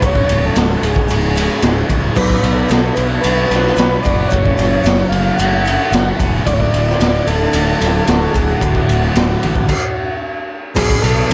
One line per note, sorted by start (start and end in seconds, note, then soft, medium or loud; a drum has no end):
0.00 0.21 C#1 loud
0.00 0.54 C#2 medium
0.00 0.85 F#3 medium
0.00 0.85 F#4 medium
0.00 2.15 F#5 medium
0.00 2.16 G#5 medium
0.00 6.44 C#6 medium
0.00 kick loud
0.00 ride loud
0.00 shaker loud
0.06 0.45 C#5 loud
0.15 kick medium
0.29 0.49 C#1 medium
0.29 ride medium
0.29 shaker medium
0.43 0.85 A4 medium
0.43 shaker soft
0.55 0.75 C#1 medium
0.55 1.90 C#2 medium
0.55 snare loud
0.55 ride medium
0.55 shaker loud
0.82 1.01 C#1 medium
0.82 1.35 G#2 medium
0.82 1.87 G#4 medium
0.82 ride medium
0.82 shaker medium
0.96 kick medium
0.96 shaker soft
1.08 1.47 C#1 loud
1.08 1.88 C#3 medium
1.08 ride loud
1.08 shaker loud
1.23 shaker soft
1.35 2.17 G#2 medium
1.35 ride medium
1.35 shaker medium
1.49 shaker soft
1.62 1.82 C#1 medium
1.62 2.97 F#3 medium
1.62 snare loud
1.62 ride loud
1.62 shaker loud
1.76 shaker soft
1.89 2.09 C#1 medium
1.89 2.16 C#3 medium
1.89 kick medium
1.89 ride medium
1.89 shaker medium
2.15 2.36 B1 medium
2.15 3.51 B2 medium
2.15 2.58 B4 loud
2.15 4.31 B5 medium
2.15 kick loud
2.15 crash loud
2.15 shaker loud
2.20 4.31 D5 medium
2.30 kick medium
2.42 2.62 B1 medium
2.42 ride medium
2.42 shaker medium
2.54 2.62 A4 medium
2.63 2.71 B4 medium
2.69 2.89 B1 medium
2.69 4.05 B3 medium
2.69 2.95 A4 medium
2.69 snare loud
2.69 ride loud
2.69 shaker loud
2.95 3.17 B1 medium
2.95 3.49 D4 medium
2.95 3.07 B4 medium
2.95 ride medium
2.95 shaker medium
3.21 3.43 B1 medium
3.21 3.99 B4 loud
3.21 ride loud
3.21 shaker medium
3.25 4.05 F#4 medium
3.50 3.70 B1 medium
3.50 4.32 D4 medium
3.50 snare soft
3.50 ride medium
3.66 snare soft
3.76 3.96 B1 medium
3.76 4.32 B4 medium
3.76 snare loud
3.76 ride medium
3.76 shaker loud
3.90 shaker soft
4.03 4.24 F1 medium
4.03 5.39 F#4 medium
4.03 4.32 D5 loud
4.03 kick medium
4.03 ride medium
4.03 shaker medium
4.17 shaker soft
4.28 4.54 C#5 loud
4.28 shaker loud
4.32 4.51 F#1 loud
4.32 5.67 F#2 medium
4.32 6.45 F#5 medium
4.32 9.66 A5 medium
4.32 kick loud
4.32 ride loud
4.46 kick medium
4.55 4.77 F#1 medium
4.55 5.07 C#5 loud
4.55 ride medium
4.55 shaker medium
4.60 snare soft
4.83 5.04 F#1 medium
4.83 7.27 F#3 medium
4.83 snare loud
4.83 ride loud
4.83 shaker loud
5.09 5.30 F#1 medium
5.09 5.35 F5 loud
5.09 ride medium
5.14 5.67 A3 medium
5.36 5.77 F#1 medium
5.36 6.19 C#4 medium
5.36 6.14 F#5 loud
5.36 ride loud
5.36 shaker loud
5.65 7.53 A3 medium
5.65 ride medium
5.65 shaker medium
5.92 6.11 F#1 medium
5.92 8.08 F#4 medium
5.92 snare loud
5.92 ride loud
5.92 shaker medium
6.06 shaker soft
6.19 6.39 F1 medium
6.19 6.47 C#4 medium
6.19 kick medium
6.19 ride medium
6.19 shaker medium
6.33 shaker soft
6.46 6.66 D1 loud
6.46 7.81 D2 medium
6.46 6.54 D5 loud
6.46 9.66 F#5 medium
6.46 9.66 D6 medium
6.46 kick loud
6.46 ride loud
6.46 shaker medium
6.53 6.61 C#5 loud
6.60 7.29 D5 loud
6.60 kick medium
6.74 6.93 D1 medium
6.74 ride medium
6.74 shaker medium
6.89 snare soft
7.00 7.19 D1 medium
7.00 8.35 A2 medium
7.00 snare loud
7.00 ride loud
7.00 shaker medium
7.27 7.46 D1 medium
7.27 7.81 D3 medium
7.27 8.38 A4 medium
7.27 ride medium
7.27 shaker medium
7.53 7.73 D1 medium
7.53 8.34 F#3 medium
7.53 ride loud
7.53 shaker loud
7.81 8.00 D1 medium
7.81 9.16 D3 medium
7.81 snare soft
7.81 ride medium
7.81 shaker medium
8.07 8.27 D1 medium
8.07 9.42 F#4 medium
8.07 snare loud
8.07 ride medium
8.07 shaker loud
8.21 shaker soft
8.30 8.60 G#4 medium
8.34 8.54 D1 medium
8.34 9.69 F#3 medium
8.34 kick medium
8.34 ride medium
8.34 shaker medium
8.49 shaker soft
8.58 10.17 F#4 medium
8.58 kick loud
8.62 8.81 D1 loud
8.62 9.69 D2 medium
8.62 ride loud
8.62 shaker loud
8.75 kick medium
8.75 shaker soft
8.89 9.08 D1 medium
8.89 ride medium
8.89 shaker medium
9.04 shaker soft
9.15 9.35 D1 medium
9.15 9.69 A2 medium
9.15 snare loud
9.15 ride medium
9.15 shaker medium
9.42 9.62 A1 medium
9.42 9.69 D3 medium
9.42 ride medium
9.42 shaker medium
9.56 kick medium
9.56 shaker soft
9.69 kick medium
9.69 crash loud
10.75 10.95 B1 medium
10.75 11.34 B2 medium
10.75 11.03 G#4 loud
10.75 11.34 D5 medium
10.75 11.34 B5 medium
10.75 11.34 C#6 medium
10.75 kick loud
10.75 crash loud
10.75 shaker medium
10.90 kick medium
11.02 11.22 B1 medium
11.02 11.26 A4 loud
11.02 ride medium
11.02 shaker medium
11.28 11.34 B1 medium
11.28 11.34 B3 medium
11.28 11.34 A4 loud
11.28 shaker loud